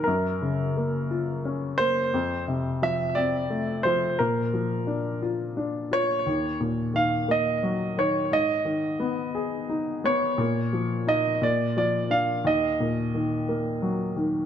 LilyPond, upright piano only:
\new Staff \with { instrumentName = "Upright piano" } { \clef bass \time 6/8 \key ees \minor \tempo 4. = 58 ges,8 des8 bes8 f'8 des'8 bes8 | f,8 c8 f8 c'8 a8 f8 | bes,8 f8 d'8 f'8 d'8 f'8 | ees,8 bes,8 ees8 bes8 ges8 ees8 |
aes,8 ees8 ces'8 aes'8 ees'8 ces'8 | bes,8 f8 ees'8 bes,8 f8 d'8 | ees,8 bes,8 ees8 bes8 ges8 ees8 | }